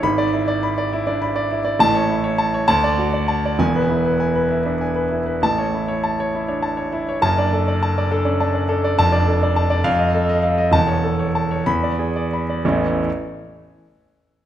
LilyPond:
<<
  \new Staff \with { instrumentName = "Grand piano" } { \time 6/8 \key a \major \tempo 4. = 67 << { b''8 r2 r8 | a''8 r4 a''8 r4 | gis''8 r2 r8 | a''8 r2 r8 |
a''8 r2 r8 | a''8 r4 f''8 r4 | a''8 r4 b''8 r4 | <a,, e, e a cis' e'>8 r2 r8 | } \\ { r16 d''16 e'16 d''16 b''16 d''16 e'16 d''16 b''16 d''16 e'16 d''16 | r16 cis''16 e'16 cis''16 a''16 cis''16 r16 d''16 fis'16 d''16 a''16 d''16 | r16 b'16 e'16 b'16 gis''16 b'16 e'16 b'16 gis''16 b'16 e'16 b'16 | r16 cis''16 e'16 cis''16 a''16 cis''16 e'16 cis''16 a''16 cis''16 e'16 cis''16 |
r16 d''16 a'16 d''16 a''16 d''16 a'16 d''16 a''16 d''16 a'16 d''16 | r16 d''16 a'16 d''16 a''16 d''16 r16 ees''16 a'16 ees''16 f''16 ees''16 | r16 cis''16 a'16 cis''16 a''16 cis''16 r16 d''16 gis'16 d''16 b''16 d''16 | r2. | } >> }
  \new Staff \with { instrumentName = "Grand piano" } { \clef bass \time 6/8 \key a \major <gis,, gis,>4.~ <gis,, gis,>16 d'16 r4 | <a,, a,>4. d,4. | <e,, e,>4.~ <e,, e,>16 d'16 r4 | <a,, a,>4.~ <a,, a,>16 d'16 r4 |
<fis,, fis,>16 d'8 r8. d'16 cis'16 d'8 d'8 | <f,, f,>16 d'8 r8. f,4. | <e,, e,>4. e,4. | r2. | }
>>